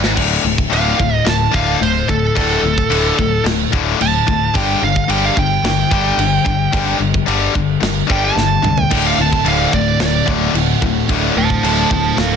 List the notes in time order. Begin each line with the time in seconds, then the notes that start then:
0.04 G#1 G#2, snare
0.15 D1 D2 A2 D3, kick, crash
0.43 D1 D2 A2
0.58 kick
0.70 D1 D2 A2 D3, crash
0.74 F5
0.97 D1 D2 A2, kick
1.15 D#5
1.25 D1 D2 A2, snare, crash
1.29 A5
1.51 D1 D2 A2 D3 F5, kick
1.80 D1 D2 A2 C5, crash
2.08 D1 D2 A2 A4, kick
2.35 D1 D2 A2 D3 A4, kick, crash
2.63 D1 D2 A2
2.78 kick
2.90 D1 D2 A2 D3, crash
3.18 D1 D2 A2, kick
3.44 D1 D2 A2, snare, crash
3.72 D1 D2 A2 D3, kick
3.99 D1 D2 A2 A5, crash
4.27 D1 D2 A2, kick
4.54 G1 G2 D3 G3 G5, kick, crash
4.82 G1 G2 D3 F5
4.96 kick
5.08 G1 G2 D3 G3 G5, crash
5.25 F5
5.35 G1 G2 D3 G5, kick
5.63 G1 G2 D3, snare, crash
5.91 G1 G2 D3 G3, kick
6.17 G1 G2 D3, crash
6.45 G1 G2 D3, kick
6.72 G1 G2 D3 G3, kick, crash
6.99 G1 G2 D3
7.14 kick
7.26 G1 G2 D3 G3, crash
7.54 G1 G2 D3, kick
7.80 G1 G2 D3, snare, crash
8.07 G1 G2 D3 G3, kick
8.12 G5
8.25 A5
8.35 G1 G2 D3, snare
8.62 C2 G2 D3, mid tom
8.78 floor tom
8.83 G5
8.90 D1 D2 A2 D3 A3 F#4, kick, crash
9.07 F5
9.18 D1 D2 A2 A5
9.33 kick
9.45 D1 D2 A2 D3 F5, crash
9.73 D1 D2 A2 D5, kick
10.00 D1 D2 A2 D5, snare, crash
10.25 D1 D2 A2 D3 A3 F#4, kick
10.54 D1 D2 A2 D3 A3 F#4, crash
10.82 D1 D2 A2, kick
11.09 D1 D2 A2 D3 A3 F#4, kick, crash
11.36 D1 D2 A2 C5 A5
11.50 kick
11.63 D1 D2 A2 D3 C5 A5, crash
11.90 D1 D2 A2 C5 A5, kick
12.17 D1 D2 A2 A4 F5, snare, crash